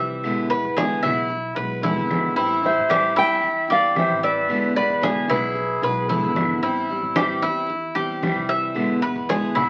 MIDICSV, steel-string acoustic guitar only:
0, 0, Header, 1, 3, 480
1, 0, Start_track
1, 0, Key_signature, 0, "minor"
1, 0, Tempo, 532387
1, 215, Time_signature, 4, 2, 24, 8
1, 8740, End_track
2, 0, Start_track
2, 0, Title_t, "Steel-string acoustic guitar"
2, 0, Program_c, 0, 25
2, 0, Note_on_c, 0, 52, 71
2, 0, Note_on_c, 0, 55, 76
2, 0, Note_on_c, 0, 60, 70
2, 0, Note_on_c, 0, 64, 78
2, 205, Note_off_c, 0, 52, 0
2, 208, Note_off_c, 0, 55, 0
2, 210, Note_off_c, 0, 60, 0
2, 213, Note_off_c, 0, 64, 0
2, 217, Note_on_c, 0, 47, 74
2, 222, Note_on_c, 0, 50, 71
2, 224, Note_on_c, 0, 56, 71
2, 231, Note_on_c, 0, 59, 74
2, 232, Note_on_c, 0, 64, 80
2, 440, Note_off_c, 0, 64, 0
2, 447, Note_off_c, 0, 47, 0
2, 449, Note_off_c, 0, 50, 0
2, 450, Note_off_c, 0, 56, 0
2, 451, Note_off_c, 0, 59, 0
2, 451, Note_on_c, 0, 64, 52
2, 462, Note_on_c, 0, 59, 50
2, 464, Note_on_c, 0, 56, 43
2, 684, Note_off_c, 0, 64, 0
2, 686, Note_off_c, 0, 56, 0
2, 689, Note_off_c, 0, 59, 0
2, 691, Note_on_c, 0, 47, 70
2, 692, Note_on_c, 0, 50, 73
2, 697, Note_on_c, 0, 56, 80
2, 701, Note_on_c, 0, 59, 71
2, 704, Note_on_c, 0, 64, 75
2, 918, Note_off_c, 0, 64, 0
2, 920, Note_off_c, 0, 59, 0
2, 924, Note_off_c, 0, 47, 0
2, 924, Note_off_c, 0, 50, 0
2, 926, Note_off_c, 0, 56, 0
2, 929, Note_on_c, 0, 64, 52
2, 931, Note_on_c, 0, 59, 44
2, 940, Note_on_c, 0, 56, 43
2, 1158, Note_off_c, 0, 59, 0
2, 1159, Note_off_c, 0, 64, 0
2, 1160, Note_off_c, 0, 56, 0
2, 1409, Note_on_c, 0, 64, 52
2, 1415, Note_on_c, 0, 59, 43
2, 1418, Note_on_c, 0, 56, 37
2, 1639, Note_off_c, 0, 56, 0
2, 1642, Note_off_c, 0, 64, 0
2, 1642, Note_on_c, 0, 47, 65
2, 1645, Note_off_c, 0, 59, 0
2, 1646, Note_on_c, 0, 50, 70
2, 1649, Note_on_c, 0, 56, 72
2, 1656, Note_on_c, 0, 64, 81
2, 1658, Note_on_c, 0, 59, 76
2, 2119, Note_off_c, 0, 47, 0
2, 2120, Note_off_c, 0, 50, 0
2, 2122, Note_off_c, 0, 56, 0
2, 2126, Note_off_c, 0, 64, 0
2, 2127, Note_off_c, 0, 59, 0
2, 2127, Note_on_c, 0, 52, 66
2, 2132, Note_on_c, 0, 55, 70
2, 2136, Note_on_c, 0, 60, 73
2, 2140, Note_on_c, 0, 64, 84
2, 2353, Note_off_c, 0, 64, 0
2, 2356, Note_off_c, 0, 60, 0
2, 2361, Note_off_c, 0, 52, 0
2, 2363, Note_off_c, 0, 55, 0
2, 2364, Note_on_c, 0, 64, 53
2, 2367, Note_on_c, 0, 60, 44
2, 2375, Note_on_c, 0, 55, 42
2, 2596, Note_off_c, 0, 55, 0
2, 2599, Note_off_c, 0, 64, 0
2, 2601, Note_off_c, 0, 60, 0
2, 2601, Note_on_c, 0, 52, 69
2, 2607, Note_on_c, 0, 55, 75
2, 2612, Note_on_c, 0, 60, 77
2, 2614, Note_on_c, 0, 64, 87
2, 2836, Note_off_c, 0, 64, 0
2, 2838, Note_off_c, 0, 52, 0
2, 2841, Note_off_c, 0, 55, 0
2, 2841, Note_off_c, 0, 60, 0
2, 2847, Note_on_c, 0, 64, 53
2, 2852, Note_on_c, 0, 60, 42
2, 2862, Note_on_c, 0, 55, 43
2, 3076, Note_off_c, 0, 55, 0
2, 3078, Note_off_c, 0, 60, 0
2, 3081, Note_off_c, 0, 64, 0
2, 3318, Note_on_c, 0, 64, 49
2, 3323, Note_on_c, 0, 60, 43
2, 3333, Note_on_c, 0, 55, 40
2, 3555, Note_off_c, 0, 55, 0
2, 3556, Note_off_c, 0, 64, 0
2, 3559, Note_off_c, 0, 60, 0
2, 3561, Note_on_c, 0, 52, 70
2, 3566, Note_on_c, 0, 55, 71
2, 3568, Note_on_c, 0, 60, 71
2, 3575, Note_on_c, 0, 64, 69
2, 4038, Note_off_c, 0, 52, 0
2, 4040, Note_off_c, 0, 55, 0
2, 4041, Note_off_c, 0, 60, 0
2, 4043, Note_on_c, 0, 47, 68
2, 4045, Note_off_c, 0, 64, 0
2, 4047, Note_on_c, 0, 50, 69
2, 4048, Note_on_c, 0, 56, 74
2, 4050, Note_on_c, 0, 59, 81
2, 4057, Note_on_c, 0, 64, 77
2, 4270, Note_off_c, 0, 64, 0
2, 4278, Note_off_c, 0, 59, 0
2, 4279, Note_off_c, 0, 47, 0
2, 4280, Note_on_c, 0, 64, 50
2, 4281, Note_off_c, 0, 50, 0
2, 4281, Note_off_c, 0, 56, 0
2, 4288, Note_on_c, 0, 59, 47
2, 4296, Note_on_c, 0, 56, 43
2, 4516, Note_off_c, 0, 56, 0
2, 4517, Note_off_c, 0, 64, 0
2, 4519, Note_off_c, 0, 59, 0
2, 4521, Note_on_c, 0, 47, 74
2, 4523, Note_on_c, 0, 50, 75
2, 4526, Note_on_c, 0, 56, 77
2, 4530, Note_on_c, 0, 59, 76
2, 4537, Note_on_c, 0, 64, 76
2, 4742, Note_off_c, 0, 64, 0
2, 4751, Note_off_c, 0, 59, 0
2, 4753, Note_on_c, 0, 64, 58
2, 4755, Note_off_c, 0, 56, 0
2, 4758, Note_off_c, 0, 47, 0
2, 4759, Note_off_c, 0, 50, 0
2, 4761, Note_on_c, 0, 59, 49
2, 4766, Note_on_c, 0, 56, 47
2, 4994, Note_off_c, 0, 64, 0
2, 4996, Note_off_c, 0, 56, 0
2, 4998, Note_off_c, 0, 59, 0
2, 5248, Note_on_c, 0, 64, 51
2, 5255, Note_on_c, 0, 59, 42
2, 5263, Note_on_c, 0, 56, 36
2, 5481, Note_off_c, 0, 64, 0
2, 5485, Note_off_c, 0, 59, 0
2, 5489, Note_off_c, 0, 56, 0
2, 5494, Note_on_c, 0, 47, 63
2, 5494, Note_on_c, 0, 50, 81
2, 5499, Note_on_c, 0, 56, 67
2, 5501, Note_on_c, 0, 59, 71
2, 5504, Note_on_c, 0, 64, 78
2, 5964, Note_off_c, 0, 47, 0
2, 5964, Note_off_c, 0, 50, 0
2, 5967, Note_off_c, 0, 56, 0
2, 5968, Note_off_c, 0, 59, 0
2, 5969, Note_off_c, 0, 64, 0
2, 5971, Note_on_c, 0, 52, 67
2, 5979, Note_on_c, 0, 55, 75
2, 5983, Note_on_c, 0, 60, 71
2, 5984, Note_on_c, 0, 64, 74
2, 6200, Note_off_c, 0, 64, 0
2, 6203, Note_off_c, 0, 52, 0
2, 6207, Note_off_c, 0, 55, 0
2, 6209, Note_off_c, 0, 60, 0
2, 6210, Note_on_c, 0, 64, 51
2, 6219, Note_on_c, 0, 60, 43
2, 6225, Note_on_c, 0, 55, 46
2, 6442, Note_off_c, 0, 55, 0
2, 6443, Note_off_c, 0, 64, 0
2, 6447, Note_off_c, 0, 60, 0
2, 6447, Note_on_c, 0, 52, 68
2, 6453, Note_on_c, 0, 55, 70
2, 6459, Note_on_c, 0, 60, 87
2, 6461, Note_on_c, 0, 64, 81
2, 6678, Note_off_c, 0, 64, 0
2, 6681, Note_off_c, 0, 52, 0
2, 6684, Note_off_c, 0, 55, 0
2, 6687, Note_off_c, 0, 60, 0
2, 6689, Note_on_c, 0, 64, 55
2, 6697, Note_on_c, 0, 60, 51
2, 6704, Note_on_c, 0, 55, 42
2, 6922, Note_off_c, 0, 64, 0
2, 6924, Note_off_c, 0, 60, 0
2, 6925, Note_off_c, 0, 55, 0
2, 7170, Note_on_c, 0, 64, 51
2, 7178, Note_on_c, 0, 60, 44
2, 7187, Note_on_c, 0, 55, 39
2, 7403, Note_off_c, 0, 64, 0
2, 7407, Note_off_c, 0, 55, 0
2, 7407, Note_off_c, 0, 60, 0
2, 7414, Note_on_c, 0, 52, 73
2, 7418, Note_on_c, 0, 55, 70
2, 7420, Note_on_c, 0, 60, 74
2, 7426, Note_on_c, 0, 64, 78
2, 7884, Note_on_c, 0, 47, 71
2, 7885, Note_off_c, 0, 52, 0
2, 7887, Note_off_c, 0, 55, 0
2, 7888, Note_off_c, 0, 60, 0
2, 7888, Note_off_c, 0, 64, 0
2, 7889, Note_on_c, 0, 50, 72
2, 7891, Note_on_c, 0, 56, 77
2, 7895, Note_on_c, 0, 59, 74
2, 7899, Note_on_c, 0, 64, 77
2, 8120, Note_off_c, 0, 64, 0
2, 8121, Note_off_c, 0, 47, 0
2, 8123, Note_off_c, 0, 50, 0
2, 8124, Note_off_c, 0, 56, 0
2, 8126, Note_off_c, 0, 59, 0
2, 8131, Note_on_c, 0, 64, 53
2, 8138, Note_on_c, 0, 59, 51
2, 8146, Note_on_c, 0, 56, 45
2, 8364, Note_off_c, 0, 64, 0
2, 8368, Note_off_c, 0, 59, 0
2, 8369, Note_off_c, 0, 56, 0
2, 8375, Note_on_c, 0, 47, 67
2, 8377, Note_on_c, 0, 50, 74
2, 8380, Note_on_c, 0, 56, 80
2, 8387, Note_on_c, 0, 59, 76
2, 8388, Note_on_c, 0, 64, 84
2, 8606, Note_off_c, 0, 47, 0
2, 8606, Note_off_c, 0, 64, 0
2, 8607, Note_off_c, 0, 50, 0
2, 8609, Note_off_c, 0, 56, 0
2, 8612, Note_off_c, 0, 59, 0
2, 8617, Note_on_c, 0, 64, 55
2, 8624, Note_on_c, 0, 59, 47
2, 8631, Note_on_c, 0, 56, 39
2, 8740, Note_off_c, 0, 56, 0
2, 8740, Note_off_c, 0, 59, 0
2, 8740, Note_off_c, 0, 64, 0
2, 8740, End_track
3, 0, Start_track
3, 0, Title_t, "Muted steel-string acoustic guitar strokes"
3, 1164, Note_on_c, 9, 29, 60
3, 1255, Note_off_c, 9, 29, 0
3, 3084, Note_on_c, 9, 29, 65
3, 3174, Note_off_c, 9, 29, 0
3, 5002, Note_on_c, 9, 29, 64
3, 5092, Note_off_c, 9, 29, 0
3, 6932, Note_on_c, 9, 29, 57
3, 7022, Note_off_c, 9, 29, 0
3, 8740, End_track
0, 0, End_of_file